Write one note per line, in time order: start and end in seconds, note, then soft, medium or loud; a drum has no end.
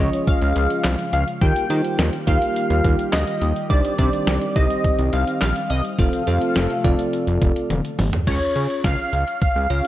0.00 0.10 C#2 loud
0.00 1.39 C#3 medium
0.00 1.38 F3 medium
0.00 1.39 G#3 medium
0.00 0.88 C#4 medium
0.00 0.88 F4 medium
0.00 1.39 F4 medium
0.00 0.88 G#4 medium
0.00 1.39 G#4 medium
0.00 0.31 C#5 loud
0.00 0.88 D#5 loud
0.13 closed hi-hat medium
0.27 1.12 F5 loud
0.27 kick loud
0.27 closed hi-hat medium
0.42 0.53 C#2 loud
0.42 closed hi-hat soft
0.56 0.67 C#2 loud
0.56 closed hi-hat medium
0.70 closed hi-hat medium
0.84 0.96 C2 loud
0.84 snare loud
0.84 clap loud
0.84 closed hi-hat medium
0.99 closed hi-hat medium
1.13 1.25 C#2 loud
1.13 1.26 F5 loud
1.13 closed hi-hat medium
1.28 closed hi-hat soft
1.41 1.53 D#2 loud
1.41 5.95 D#3 medium
1.41 5.95 G3 medium
1.41 3.68 A#3 medium
1.41 1.64 D#4 medium
1.41 3.68 F4 medium
1.41 1.64 F4 medium
1.41 5.95 G4 loud
1.41 1.64 G4 medium
1.41 1.64 A#4 medium
1.41 1.95 G5 loud
1.41 kick loud
1.41 closed hi-hat medium
1.56 closed hi-hat medium
1.70 1.82 D#3 loud
1.70 2.15 D#4 medium
1.70 2.15 F4 medium
1.70 2.15 G4 medium
1.70 2.15 C5 medium
1.70 closed hi-hat medium
1.84 closed hi-hat medium
1.99 2.10 D#2 loud
1.99 snare loud
1.99 closed hi-hat medium
2.13 closed hi-hat medium
2.27 2.39 D#2 loud
2.27 3.16 D#4 medium
2.27 3.16 F4 medium
2.27 3.16 G4 medium
2.27 3.16 A#4 medium
2.27 3.15 F5 loud
2.27 kick medium
2.27 closed hi-hat medium
2.42 closed hi-hat medium
2.56 closed hi-hat medium
2.70 2.82 D#2 loud
2.70 closed hi-hat soft
2.84 2.96 D#2 loud
2.84 kick medium
2.84 closed hi-hat medium
2.99 closed hi-hat medium
3.13 3.25 D2 loud
3.13 3.66 D#5 loud
3.13 snare loud
3.13 clap loud
3.13 closed hi-hat medium
3.27 closed hi-hat medium
3.41 3.53 D#2 medium
3.41 closed hi-hat medium
3.56 closed hi-hat soft
3.70 3.82 C2 loud
3.70 5.96 C4 medium
3.70 3.92 D4 medium
3.70 3.92 D#4 medium
3.70 3.92 G4 medium
3.70 3.92 C5 medium
3.70 3.97 D5 loud
3.70 kick loud
3.70 closed hi-hat medium
3.85 closed hi-hat medium
3.98 4.10 C3 loud
3.98 4.43 D4 medium
3.98 4.43 D#4 medium
3.98 4.43 G4 medium
3.98 4.43 C5 medium
3.98 4.57 D5 loud
3.98 kick loud
3.98 closed hi-hat medium
4.13 closed hi-hat medium
4.27 4.39 C2 loud
4.27 snare loud
4.27 closed hi-hat medium
4.41 closed hi-hat medium
4.56 4.67 C2 loud
4.56 5.45 C4 medium
4.56 5.45 D#4 medium
4.56 5.45 G4 medium
4.56 5.45 C5 medium
4.56 5.15 D#5 loud
4.56 kick loud
4.56 closed hi-hat medium
4.70 closed hi-hat medium
4.84 kick loud
4.84 closed hi-hat medium
4.99 5.10 C2 medium
4.99 closed hi-hat soft
5.13 5.25 C2 loud
5.13 5.39 F5 loud
5.13 closed hi-hat medium
5.27 closed hi-hat medium
5.41 5.53 A#1 loud
5.41 5.71 F5 loud
5.41 snare loud
5.41 clap loud
5.41 closed hi-hat medium
5.56 closed hi-hat medium
5.70 5.82 C2 medium
5.70 5.83 D#5 loud
5.70 closed hi-hat medium
5.85 closed hi-hat soft
5.99 6.10 F1 loud
5.99 8.25 C3 medium
5.99 8.25 F3 medium
5.99 8.25 A3 medium
5.99 6.21 C4 medium
5.99 6.21 F4 medium
5.99 8.25 F4 medium
5.99 6.21 A4 medium
5.99 8.25 A4 medium
5.99 6.21 C5 medium
5.99 7.66 F5 loud
5.99 kick loud
5.99 closed hi-hat medium
6.13 closed hi-hat medium
6.27 6.39 F2 loud
6.27 6.72 C4 medium
6.27 6.72 F4 medium
6.27 6.72 A4 medium
6.27 6.72 C5 medium
6.27 closed hi-hat medium
6.41 closed hi-hat medium
6.56 6.68 F1 loud
6.56 snare loud
6.56 closed hi-hat medium
6.70 closed hi-hat medium
6.84 6.96 F1 loud
6.84 7.74 C4 medium
6.84 7.74 F4 medium
6.84 7.74 A4 medium
6.84 7.74 D5 loud
6.84 kick medium
6.84 closed hi-hat medium
6.99 closed hi-hat medium
7.13 closed hi-hat medium
7.27 7.39 F1 loud
7.27 closed hi-hat soft
7.42 7.53 F1 loud
7.42 kick medium
7.42 closed hi-hat medium
7.56 closed hi-hat medium
7.70 7.82 F1 medium
7.70 closed hi-hat medium
7.70 high tom medium
7.85 closed hi-hat medium
7.99 8.10 G1 loud
7.99 mid tom loud
7.99 open hi-hat medium
8.13 closed hi-hat soft
8.13 floor tom medium
8.27 8.39 C#2 loud
8.27 9.17 C#4 medium
8.27 9.17 F4 medium
8.27 9.17 G#4 medium
8.27 9.17 C#5 medium
8.27 8.81 C#5 loud
8.27 kick loud
8.27 closed hi-hat medium
8.27 crash medium
8.56 8.67 C#3 medium
8.56 closed hi-hat medium
8.70 closed hi-hat medium
8.84 8.96 C#2 loud
8.84 9.41 F5 loud
8.84 kick loud
8.84 snare loud
8.84 closed hi-hat medium
9.13 9.24 C#2 loud
9.13 closed hi-hat medium
9.28 closed hi-hat medium
9.42 9.87 F5 loud
9.42 kick loud
9.42 closed hi-hat medium
9.56 9.67 C#2 medium
9.70 9.82 C#2 loud
9.70 9.87 C#4 medium
9.70 9.87 F4 medium
9.70 9.87 G#4 medium
9.70 9.87 C#5 medium
9.70 closed hi-hat medium